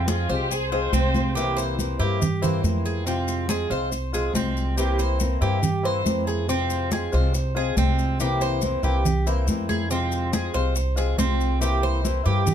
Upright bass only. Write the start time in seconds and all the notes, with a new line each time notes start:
Already playing: F2
0.29 C2
0.92 C2
1.99 G2
2.63 F2
3.70 C2
4.33 C2
5.41 G2
6.05 F2
7.13 C2
7.77 C2
8.83 C2
9.47 F2
10.54 C2
11.18 C2
12.26 G2